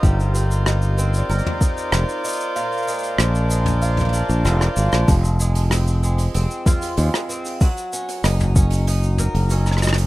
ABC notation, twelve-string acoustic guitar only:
X:1
M:4/4
L:1/8
Q:1/4=95
K:Fdor
V:1 name="Twelve-string acoustic guitar"
G, C E C B E B E | B,, A, D A, F D F D | F,, A, C A, C F A, C | _G, _D E D E B D E |]